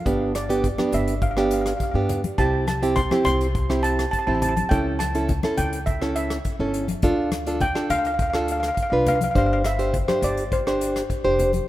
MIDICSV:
0, 0, Header, 1, 5, 480
1, 0, Start_track
1, 0, Tempo, 580833
1, 50, Time_signature, 4, 2, 24, 8
1, 9654, End_track
2, 0, Start_track
2, 0, Title_t, "Steel pan"
2, 0, Program_c, 0, 114
2, 0, Note_on_c, 0, 77, 82
2, 262, Note_off_c, 0, 77, 0
2, 294, Note_on_c, 0, 74, 72
2, 739, Note_off_c, 0, 74, 0
2, 780, Note_on_c, 0, 76, 75
2, 886, Note_off_c, 0, 76, 0
2, 1012, Note_on_c, 0, 77, 67
2, 1070, Note_off_c, 0, 77, 0
2, 1083, Note_on_c, 0, 77, 51
2, 1137, Note_off_c, 0, 77, 0
2, 1152, Note_on_c, 0, 77, 46
2, 1195, Note_off_c, 0, 77, 0
2, 1267, Note_on_c, 0, 77, 53
2, 1323, Note_off_c, 0, 77, 0
2, 1332, Note_on_c, 0, 77, 44
2, 1377, Note_off_c, 0, 77, 0
2, 1387, Note_on_c, 0, 77, 39
2, 1444, Note_off_c, 0, 77, 0
2, 1462, Note_on_c, 0, 77, 40
2, 1506, Note_off_c, 0, 77, 0
2, 1516, Note_on_c, 0, 77, 49
2, 1572, Note_off_c, 0, 77, 0
2, 1582, Note_on_c, 0, 77, 43
2, 1636, Note_off_c, 0, 77, 0
2, 1968, Note_on_c, 0, 81, 85
2, 2192, Note_off_c, 0, 81, 0
2, 2212, Note_on_c, 0, 81, 72
2, 2434, Note_off_c, 0, 81, 0
2, 2444, Note_on_c, 0, 84, 94
2, 2670, Note_off_c, 0, 84, 0
2, 2685, Note_on_c, 0, 84, 90
2, 3135, Note_off_c, 0, 84, 0
2, 3164, Note_on_c, 0, 81, 84
2, 3389, Note_off_c, 0, 81, 0
2, 3399, Note_on_c, 0, 81, 77
2, 3450, Note_off_c, 0, 81, 0
2, 3460, Note_on_c, 0, 81, 59
2, 3518, Note_off_c, 0, 81, 0
2, 3528, Note_on_c, 0, 81, 67
2, 3582, Note_off_c, 0, 81, 0
2, 3592, Note_on_c, 0, 81, 54
2, 3643, Note_off_c, 0, 81, 0
2, 3653, Note_on_c, 0, 81, 68
2, 3698, Note_off_c, 0, 81, 0
2, 3707, Note_on_c, 0, 81, 64
2, 3762, Note_off_c, 0, 81, 0
2, 3772, Note_on_c, 0, 81, 56
2, 3843, Note_off_c, 0, 81, 0
2, 3876, Note_on_c, 0, 79, 81
2, 4106, Note_off_c, 0, 79, 0
2, 4124, Note_on_c, 0, 81, 78
2, 4608, Note_on_c, 0, 79, 80
2, 4622, Note_off_c, 0, 81, 0
2, 4832, Note_off_c, 0, 79, 0
2, 4843, Note_on_c, 0, 76, 76
2, 5070, Note_off_c, 0, 76, 0
2, 5088, Note_on_c, 0, 76, 73
2, 5536, Note_off_c, 0, 76, 0
2, 6293, Note_on_c, 0, 79, 94
2, 6532, Note_on_c, 0, 77, 98
2, 6539, Note_off_c, 0, 79, 0
2, 6588, Note_off_c, 0, 77, 0
2, 6598, Note_on_c, 0, 77, 70
2, 6657, Note_off_c, 0, 77, 0
2, 6666, Note_on_c, 0, 77, 66
2, 6717, Note_off_c, 0, 77, 0
2, 6727, Note_on_c, 0, 77, 54
2, 6786, Note_off_c, 0, 77, 0
2, 6796, Note_on_c, 0, 77, 64
2, 6849, Note_off_c, 0, 77, 0
2, 6859, Note_on_c, 0, 77, 54
2, 6899, Note_off_c, 0, 77, 0
2, 6909, Note_on_c, 0, 77, 55
2, 6966, Note_off_c, 0, 77, 0
2, 6975, Note_on_c, 0, 77, 45
2, 7030, Note_off_c, 0, 77, 0
2, 7039, Note_on_c, 0, 77, 60
2, 7098, Note_off_c, 0, 77, 0
2, 7108, Note_on_c, 0, 77, 60
2, 7165, Note_off_c, 0, 77, 0
2, 7173, Note_on_c, 0, 77, 61
2, 7218, Note_off_c, 0, 77, 0
2, 7228, Note_on_c, 0, 77, 54
2, 7283, Note_off_c, 0, 77, 0
2, 7293, Note_on_c, 0, 77, 61
2, 7345, Note_off_c, 0, 77, 0
2, 7355, Note_on_c, 0, 77, 57
2, 7413, Note_off_c, 0, 77, 0
2, 7507, Note_on_c, 0, 77, 85
2, 7554, Note_off_c, 0, 77, 0
2, 7564, Note_on_c, 0, 77, 64
2, 7618, Note_off_c, 0, 77, 0
2, 7635, Note_on_c, 0, 77, 62
2, 7684, Note_off_c, 0, 77, 0
2, 7695, Note_on_c, 0, 77, 54
2, 7741, Note_off_c, 0, 77, 0
2, 7751, Note_on_c, 0, 77, 71
2, 7805, Note_off_c, 0, 77, 0
2, 7820, Note_on_c, 0, 77, 56
2, 7866, Note_off_c, 0, 77, 0
2, 7876, Note_on_c, 0, 77, 69
2, 7929, Note_off_c, 0, 77, 0
2, 7980, Note_on_c, 0, 76, 84
2, 8422, Note_off_c, 0, 76, 0
2, 8464, Note_on_c, 0, 74, 76
2, 8700, Note_on_c, 0, 72, 68
2, 8705, Note_off_c, 0, 74, 0
2, 9382, Note_off_c, 0, 72, 0
2, 9654, End_track
3, 0, Start_track
3, 0, Title_t, "Nylon-string guitar"
3, 0, Program_c, 1, 24
3, 46, Note_on_c, 1, 59, 62
3, 49, Note_on_c, 1, 62, 53
3, 52, Note_on_c, 1, 67, 70
3, 265, Note_off_c, 1, 62, 0
3, 265, Note_off_c, 1, 67, 0
3, 266, Note_off_c, 1, 59, 0
3, 408, Note_on_c, 1, 59, 61
3, 413, Note_on_c, 1, 62, 57
3, 414, Note_on_c, 1, 67, 69
3, 553, Note_off_c, 1, 67, 0
3, 554, Note_off_c, 1, 59, 0
3, 555, Note_off_c, 1, 62, 0
3, 647, Note_on_c, 1, 59, 61
3, 650, Note_on_c, 1, 62, 55
3, 651, Note_on_c, 1, 67, 64
3, 937, Note_off_c, 1, 59, 0
3, 938, Note_off_c, 1, 62, 0
3, 938, Note_off_c, 1, 67, 0
3, 1132, Note_on_c, 1, 59, 62
3, 1136, Note_on_c, 1, 62, 57
3, 1139, Note_on_c, 1, 67, 67
3, 1419, Note_off_c, 1, 59, 0
3, 1421, Note_off_c, 1, 62, 0
3, 1421, Note_off_c, 1, 67, 0
3, 1614, Note_on_c, 1, 59, 64
3, 1614, Note_on_c, 1, 62, 61
3, 1614, Note_on_c, 1, 67, 70
3, 1828, Note_off_c, 1, 62, 0
3, 1828, Note_off_c, 1, 67, 0
3, 1829, Note_off_c, 1, 59, 0
3, 1973, Note_on_c, 1, 60, 60
3, 1976, Note_on_c, 1, 64, 55
3, 1978, Note_on_c, 1, 67, 64
3, 2188, Note_off_c, 1, 60, 0
3, 2189, Note_off_c, 1, 64, 0
3, 2190, Note_off_c, 1, 67, 0
3, 2333, Note_on_c, 1, 60, 58
3, 2338, Note_on_c, 1, 67, 70
3, 2339, Note_on_c, 1, 64, 55
3, 2476, Note_off_c, 1, 60, 0
3, 2477, Note_off_c, 1, 64, 0
3, 2478, Note_off_c, 1, 67, 0
3, 2572, Note_on_c, 1, 60, 55
3, 2576, Note_on_c, 1, 67, 65
3, 2577, Note_on_c, 1, 64, 59
3, 2860, Note_off_c, 1, 60, 0
3, 2860, Note_off_c, 1, 64, 0
3, 2861, Note_off_c, 1, 67, 0
3, 3054, Note_on_c, 1, 60, 61
3, 3058, Note_on_c, 1, 64, 52
3, 3059, Note_on_c, 1, 67, 64
3, 3341, Note_off_c, 1, 60, 0
3, 3341, Note_off_c, 1, 64, 0
3, 3342, Note_off_c, 1, 67, 0
3, 3530, Note_on_c, 1, 60, 70
3, 3536, Note_on_c, 1, 67, 74
3, 3538, Note_on_c, 1, 64, 64
3, 3748, Note_off_c, 1, 60, 0
3, 3748, Note_off_c, 1, 64, 0
3, 3749, Note_off_c, 1, 67, 0
3, 3890, Note_on_c, 1, 61, 64
3, 3894, Note_on_c, 1, 64, 58
3, 3894, Note_on_c, 1, 69, 72
3, 4106, Note_off_c, 1, 61, 0
3, 4108, Note_off_c, 1, 64, 0
3, 4108, Note_off_c, 1, 69, 0
3, 4254, Note_on_c, 1, 61, 60
3, 4258, Note_on_c, 1, 64, 57
3, 4261, Note_on_c, 1, 69, 63
3, 4396, Note_off_c, 1, 69, 0
3, 4397, Note_off_c, 1, 61, 0
3, 4397, Note_off_c, 1, 64, 0
3, 4494, Note_on_c, 1, 61, 65
3, 4495, Note_on_c, 1, 64, 59
3, 4501, Note_on_c, 1, 69, 68
3, 4780, Note_off_c, 1, 64, 0
3, 4781, Note_off_c, 1, 61, 0
3, 4781, Note_off_c, 1, 69, 0
3, 4972, Note_on_c, 1, 61, 65
3, 4975, Note_on_c, 1, 64, 60
3, 4979, Note_on_c, 1, 69, 68
3, 5259, Note_off_c, 1, 61, 0
3, 5261, Note_off_c, 1, 64, 0
3, 5263, Note_off_c, 1, 69, 0
3, 5454, Note_on_c, 1, 61, 70
3, 5455, Note_on_c, 1, 64, 58
3, 5460, Note_on_c, 1, 69, 69
3, 5669, Note_off_c, 1, 64, 0
3, 5670, Note_off_c, 1, 61, 0
3, 5670, Note_off_c, 1, 69, 0
3, 5811, Note_on_c, 1, 62, 77
3, 5816, Note_on_c, 1, 65, 70
3, 5819, Note_on_c, 1, 69, 83
3, 6028, Note_off_c, 1, 62, 0
3, 6028, Note_off_c, 1, 69, 0
3, 6029, Note_off_c, 1, 65, 0
3, 6172, Note_on_c, 1, 62, 62
3, 6177, Note_on_c, 1, 65, 57
3, 6179, Note_on_c, 1, 69, 67
3, 6315, Note_off_c, 1, 62, 0
3, 6317, Note_off_c, 1, 65, 0
3, 6317, Note_off_c, 1, 69, 0
3, 6405, Note_on_c, 1, 62, 62
3, 6407, Note_on_c, 1, 65, 56
3, 6410, Note_on_c, 1, 69, 70
3, 6696, Note_off_c, 1, 62, 0
3, 6696, Note_off_c, 1, 65, 0
3, 6699, Note_off_c, 1, 69, 0
3, 6892, Note_on_c, 1, 62, 59
3, 6897, Note_on_c, 1, 65, 58
3, 6898, Note_on_c, 1, 69, 71
3, 7180, Note_off_c, 1, 62, 0
3, 7181, Note_off_c, 1, 65, 0
3, 7183, Note_off_c, 1, 69, 0
3, 7371, Note_on_c, 1, 62, 60
3, 7377, Note_on_c, 1, 65, 56
3, 7379, Note_on_c, 1, 71, 77
3, 7589, Note_off_c, 1, 62, 0
3, 7590, Note_off_c, 1, 65, 0
3, 7590, Note_off_c, 1, 71, 0
3, 7728, Note_on_c, 1, 62, 65
3, 7731, Note_on_c, 1, 67, 58
3, 7732, Note_on_c, 1, 72, 65
3, 7946, Note_off_c, 1, 62, 0
3, 7947, Note_off_c, 1, 67, 0
3, 7948, Note_off_c, 1, 72, 0
3, 8089, Note_on_c, 1, 62, 65
3, 8090, Note_on_c, 1, 67, 59
3, 8093, Note_on_c, 1, 72, 71
3, 8233, Note_off_c, 1, 67, 0
3, 8234, Note_off_c, 1, 62, 0
3, 8236, Note_off_c, 1, 72, 0
3, 8329, Note_on_c, 1, 62, 62
3, 8333, Note_on_c, 1, 67, 55
3, 8333, Note_on_c, 1, 72, 65
3, 8619, Note_off_c, 1, 62, 0
3, 8620, Note_off_c, 1, 67, 0
3, 8620, Note_off_c, 1, 72, 0
3, 8819, Note_on_c, 1, 62, 65
3, 8821, Note_on_c, 1, 67, 57
3, 8822, Note_on_c, 1, 72, 69
3, 9103, Note_off_c, 1, 72, 0
3, 9104, Note_off_c, 1, 62, 0
3, 9104, Note_off_c, 1, 67, 0
3, 9291, Note_on_c, 1, 62, 72
3, 9293, Note_on_c, 1, 72, 81
3, 9295, Note_on_c, 1, 67, 63
3, 9508, Note_off_c, 1, 62, 0
3, 9508, Note_off_c, 1, 72, 0
3, 9509, Note_off_c, 1, 67, 0
3, 9654, End_track
4, 0, Start_track
4, 0, Title_t, "Upright bass"
4, 0, Program_c, 2, 32
4, 48, Note_on_c, 2, 31, 87
4, 604, Note_off_c, 2, 31, 0
4, 768, Note_on_c, 2, 31, 71
4, 1418, Note_off_c, 2, 31, 0
4, 1603, Note_on_c, 2, 43, 76
4, 1882, Note_off_c, 2, 43, 0
4, 1969, Note_on_c, 2, 36, 78
4, 2524, Note_off_c, 2, 36, 0
4, 2689, Note_on_c, 2, 36, 75
4, 3338, Note_off_c, 2, 36, 0
4, 3533, Note_on_c, 2, 33, 77
4, 3809, Note_off_c, 2, 33, 0
4, 3895, Note_on_c, 2, 37, 89
4, 4448, Note_off_c, 2, 37, 0
4, 4613, Note_on_c, 2, 37, 76
4, 5261, Note_off_c, 2, 37, 0
4, 5450, Note_on_c, 2, 31, 78
4, 5727, Note_off_c, 2, 31, 0
4, 5809, Note_on_c, 2, 38, 81
4, 6365, Note_off_c, 2, 38, 0
4, 6528, Note_on_c, 2, 38, 74
4, 7178, Note_off_c, 2, 38, 0
4, 7370, Note_on_c, 2, 36, 72
4, 7647, Note_off_c, 2, 36, 0
4, 7731, Note_on_c, 2, 31, 80
4, 8286, Note_off_c, 2, 31, 0
4, 8447, Note_on_c, 2, 31, 80
4, 9097, Note_off_c, 2, 31, 0
4, 9292, Note_on_c, 2, 29, 69
4, 9568, Note_off_c, 2, 29, 0
4, 9654, End_track
5, 0, Start_track
5, 0, Title_t, "Drums"
5, 50, Note_on_c, 9, 36, 90
5, 50, Note_on_c, 9, 42, 58
5, 132, Note_off_c, 9, 36, 0
5, 133, Note_off_c, 9, 42, 0
5, 289, Note_on_c, 9, 37, 68
5, 289, Note_on_c, 9, 42, 77
5, 372, Note_off_c, 9, 37, 0
5, 372, Note_off_c, 9, 42, 0
5, 412, Note_on_c, 9, 42, 53
5, 495, Note_off_c, 9, 42, 0
5, 528, Note_on_c, 9, 36, 75
5, 528, Note_on_c, 9, 42, 53
5, 611, Note_off_c, 9, 36, 0
5, 611, Note_off_c, 9, 42, 0
5, 646, Note_on_c, 9, 63, 58
5, 649, Note_on_c, 9, 37, 64
5, 729, Note_off_c, 9, 63, 0
5, 731, Note_off_c, 9, 37, 0
5, 765, Note_on_c, 9, 64, 56
5, 767, Note_on_c, 9, 42, 68
5, 847, Note_off_c, 9, 64, 0
5, 849, Note_off_c, 9, 42, 0
5, 889, Note_on_c, 9, 42, 56
5, 971, Note_off_c, 9, 42, 0
5, 1005, Note_on_c, 9, 42, 49
5, 1007, Note_on_c, 9, 36, 90
5, 1087, Note_off_c, 9, 42, 0
5, 1089, Note_off_c, 9, 36, 0
5, 1130, Note_on_c, 9, 37, 67
5, 1212, Note_off_c, 9, 37, 0
5, 1246, Note_on_c, 9, 42, 76
5, 1328, Note_off_c, 9, 42, 0
5, 1370, Note_on_c, 9, 37, 64
5, 1370, Note_on_c, 9, 42, 53
5, 1452, Note_off_c, 9, 37, 0
5, 1452, Note_off_c, 9, 42, 0
5, 1487, Note_on_c, 9, 42, 45
5, 1488, Note_on_c, 9, 36, 76
5, 1570, Note_off_c, 9, 42, 0
5, 1571, Note_off_c, 9, 36, 0
5, 1729, Note_on_c, 9, 42, 74
5, 1730, Note_on_c, 9, 64, 68
5, 1811, Note_off_c, 9, 42, 0
5, 1812, Note_off_c, 9, 64, 0
5, 1851, Note_on_c, 9, 42, 55
5, 1853, Note_on_c, 9, 63, 74
5, 1934, Note_off_c, 9, 42, 0
5, 1936, Note_off_c, 9, 63, 0
5, 1968, Note_on_c, 9, 42, 49
5, 1969, Note_on_c, 9, 36, 91
5, 2051, Note_off_c, 9, 42, 0
5, 2052, Note_off_c, 9, 36, 0
5, 2207, Note_on_c, 9, 63, 65
5, 2212, Note_on_c, 9, 37, 70
5, 2212, Note_on_c, 9, 42, 67
5, 2289, Note_off_c, 9, 63, 0
5, 2295, Note_off_c, 9, 37, 0
5, 2295, Note_off_c, 9, 42, 0
5, 2335, Note_on_c, 9, 42, 48
5, 2418, Note_off_c, 9, 42, 0
5, 2448, Note_on_c, 9, 64, 59
5, 2452, Note_on_c, 9, 36, 76
5, 2452, Note_on_c, 9, 42, 53
5, 2530, Note_off_c, 9, 64, 0
5, 2535, Note_off_c, 9, 36, 0
5, 2535, Note_off_c, 9, 42, 0
5, 2571, Note_on_c, 9, 63, 65
5, 2573, Note_on_c, 9, 37, 67
5, 2653, Note_off_c, 9, 63, 0
5, 2656, Note_off_c, 9, 37, 0
5, 2683, Note_on_c, 9, 64, 69
5, 2694, Note_on_c, 9, 42, 64
5, 2766, Note_off_c, 9, 64, 0
5, 2776, Note_off_c, 9, 42, 0
5, 2816, Note_on_c, 9, 42, 52
5, 2898, Note_off_c, 9, 42, 0
5, 2933, Note_on_c, 9, 36, 88
5, 2934, Note_on_c, 9, 42, 50
5, 3016, Note_off_c, 9, 36, 0
5, 3017, Note_off_c, 9, 42, 0
5, 3057, Note_on_c, 9, 37, 69
5, 3139, Note_off_c, 9, 37, 0
5, 3174, Note_on_c, 9, 42, 70
5, 3257, Note_off_c, 9, 42, 0
5, 3298, Note_on_c, 9, 37, 68
5, 3298, Note_on_c, 9, 42, 53
5, 3380, Note_off_c, 9, 37, 0
5, 3380, Note_off_c, 9, 42, 0
5, 3413, Note_on_c, 9, 42, 53
5, 3415, Note_on_c, 9, 36, 65
5, 3496, Note_off_c, 9, 42, 0
5, 3497, Note_off_c, 9, 36, 0
5, 3652, Note_on_c, 9, 64, 69
5, 3654, Note_on_c, 9, 42, 78
5, 3734, Note_off_c, 9, 64, 0
5, 3736, Note_off_c, 9, 42, 0
5, 3774, Note_on_c, 9, 63, 75
5, 3775, Note_on_c, 9, 42, 58
5, 3857, Note_off_c, 9, 63, 0
5, 3858, Note_off_c, 9, 42, 0
5, 3893, Note_on_c, 9, 42, 57
5, 3895, Note_on_c, 9, 36, 97
5, 3976, Note_off_c, 9, 42, 0
5, 3978, Note_off_c, 9, 36, 0
5, 4132, Note_on_c, 9, 37, 69
5, 4132, Note_on_c, 9, 42, 77
5, 4134, Note_on_c, 9, 63, 61
5, 4214, Note_off_c, 9, 37, 0
5, 4214, Note_off_c, 9, 42, 0
5, 4217, Note_off_c, 9, 63, 0
5, 4253, Note_on_c, 9, 42, 57
5, 4336, Note_off_c, 9, 42, 0
5, 4368, Note_on_c, 9, 64, 61
5, 4370, Note_on_c, 9, 42, 56
5, 4373, Note_on_c, 9, 36, 79
5, 4451, Note_off_c, 9, 64, 0
5, 4453, Note_off_c, 9, 42, 0
5, 4456, Note_off_c, 9, 36, 0
5, 4488, Note_on_c, 9, 63, 64
5, 4492, Note_on_c, 9, 37, 63
5, 4571, Note_off_c, 9, 63, 0
5, 4574, Note_off_c, 9, 37, 0
5, 4606, Note_on_c, 9, 64, 58
5, 4607, Note_on_c, 9, 42, 78
5, 4689, Note_off_c, 9, 64, 0
5, 4690, Note_off_c, 9, 42, 0
5, 4732, Note_on_c, 9, 42, 55
5, 4815, Note_off_c, 9, 42, 0
5, 4847, Note_on_c, 9, 42, 52
5, 4852, Note_on_c, 9, 36, 85
5, 4929, Note_off_c, 9, 42, 0
5, 4935, Note_off_c, 9, 36, 0
5, 4972, Note_on_c, 9, 37, 74
5, 5054, Note_off_c, 9, 37, 0
5, 5088, Note_on_c, 9, 42, 77
5, 5171, Note_off_c, 9, 42, 0
5, 5209, Note_on_c, 9, 37, 69
5, 5209, Note_on_c, 9, 42, 57
5, 5292, Note_off_c, 9, 37, 0
5, 5292, Note_off_c, 9, 42, 0
5, 5327, Note_on_c, 9, 42, 50
5, 5331, Note_on_c, 9, 36, 73
5, 5410, Note_off_c, 9, 42, 0
5, 5414, Note_off_c, 9, 36, 0
5, 5568, Note_on_c, 9, 42, 69
5, 5650, Note_off_c, 9, 42, 0
5, 5687, Note_on_c, 9, 63, 63
5, 5690, Note_on_c, 9, 42, 60
5, 5770, Note_off_c, 9, 63, 0
5, 5773, Note_off_c, 9, 42, 0
5, 5804, Note_on_c, 9, 42, 54
5, 5810, Note_on_c, 9, 36, 94
5, 5886, Note_off_c, 9, 42, 0
5, 5892, Note_off_c, 9, 36, 0
5, 6047, Note_on_c, 9, 37, 68
5, 6047, Note_on_c, 9, 42, 72
5, 6047, Note_on_c, 9, 63, 56
5, 6129, Note_off_c, 9, 37, 0
5, 6129, Note_off_c, 9, 42, 0
5, 6130, Note_off_c, 9, 63, 0
5, 6169, Note_on_c, 9, 42, 52
5, 6252, Note_off_c, 9, 42, 0
5, 6284, Note_on_c, 9, 64, 62
5, 6287, Note_on_c, 9, 42, 53
5, 6289, Note_on_c, 9, 36, 73
5, 6367, Note_off_c, 9, 64, 0
5, 6369, Note_off_c, 9, 42, 0
5, 6372, Note_off_c, 9, 36, 0
5, 6408, Note_on_c, 9, 37, 68
5, 6491, Note_off_c, 9, 37, 0
5, 6528, Note_on_c, 9, 42, 67
5, 6530, Note_on_c, 9, 64, 58
5, 6611, Note_off_c, 9, 42, 0
5, 6613, Note_off_c, 9, 64, 0
5, 6649, Note_on_c, 9, 42, 47
5, 6732, Note_off_c, 9, 42, 0
5, 6768, Note_on_c, 9, 42, 50
5, 6769, Note_on_c, 9, 36, 94
5, 6851, Note_off_c, 9, 42, 0
5, 6852, Note_off_c, 9, 36, 0
5, 6888, Note_on_c, 9, 37, 76
5, 6971, Note_off_c, 9, 37, 0
5, 7009, Note_on_c, 9, 42, 74
5, 7091, Note_off_c, 9, 42, 0
5, 7132, Note_on_c, 9, 37, 64
5, 7132, Note_on_c, 9, 42, 50
5, 7215, Note_off_c, 9, 37, 0
5, 7215, Note_off_c, 9, 42, 0
5, 7250, Note_on_c, 9, 36, 75
5, 7250, Note_on_c, 9, 42, 51
5, 7333, Note_off_c, 9, 36, 0
5, 7333, Note_off_c, 9, 42, 0
5, 7490, Note_on_c, 9, 42, 75
5, 7491, Note_on_c, 9, 64, 68
5, 7573, Note_off_c, 9, 42, 0
5, 7574, Note_off_c, 9, 64, 0
5, 7611, Note_on_c, 9, 63, 74
5, 7614, Note_on_c, 9, 42, 64
5, 7694, Note_off_c, 9, 63, 0
5, 7697, Note_off_c, 9, 42, 0
5, 7730, Note_on_c, 9, 36, 90
5, 7730, Note_on_c, 9, 42, 49
5, 7813, Note_off_c, 9, 36, 0
5, 7813, Note_off_c, 9, 42, 0
5, 7970, Note_on_c, 9, 37, 73
5, 7970, Note_on_c, 9, 42, 66
5, 8053, Note_off_c, 9, 37, 0
5, 8053, Note_off_c, 9, 42, 0
5, 8091, Note_on_c, 9, 42, 53
5, 8173, Note_off_c, 9, 42, 0
5, 8212, Note_on_c, 9, 36, 72
5, 8213, Note_on_c, 9, 42, 56
5, 8213, Note_on_c, 9, 64, 61
5, 8294, Note_off_c, 9, 36, 0
5, 8295, Note_off_c, 9, 64, 0
5, 8296, Note_off_c, 9, 42, 0
5, 8332, Note_on_c, 9, 37, 71
5, 8337, Note_on_c, 9, 63, 62
5, 8415, Note_off_c, 9, 37, 0
5, 8419, Note_off_c, 9, 63, 0
5, 8450, Note_on_c, 9, 42, 76
5, 8450, Note_on_c, 9, 64, 57
5, 8532, Note_off_c, 9, 42, 0
5, 8533, Note_off_c, 9, 64, 0
5, 8573, Note_on_c, 9, 42, 58
5, 8656, Note_off_c, 9, 42, 0
5, 8692, Note_on_c, 9, 36, 88
5, 8693, Note_on_c, 9, 42, 51
5, 8775, Note_off_c, 9, 36, 0
5, 8776, Note_off_c, 9, 42, 0
5, 8817, Note_on_c, 9, 37, 71
5, 8900, Note_off_c, 9, 37, 0
5, 8935, Note_on_c, 9, 42, 75
5, 9017, Note_off_c, 9, 42, 0
5, 9057, Note_on_c, 9, 37, 66
5, 9057, Note_on_c, 9, 42, 54
5, 9139, Note_off_c, 9, 37, 0
5, 9139, Note_off_c, 9, 42, 0
5, 9172, Note_on_c, 9, 36, 70
5, 9175, Note_on_c, 9, 42, 53
5, 9255, Note_off_c, 9, 36, 0
5, 9257, Note_off_c, 9, 42, 0
5, 9414, Note_on_c, 9, 64, 57
5, 9416, Note_on_c, 9, 42, 82
5, 9496, Note_off_c, 9, 64, 0
5, 9499, Note_off_c, 9, 42, 0
5, 9530, Note_on_c, 9, 63, 61
5, 9534, Note_on_c, 9, 42, 60
5, 9612, Note_off_c, 9, 63, 0
5, 9617, Note_off_c, 9, 42, 0
5, 9654, End_track
0, 0, End_of_file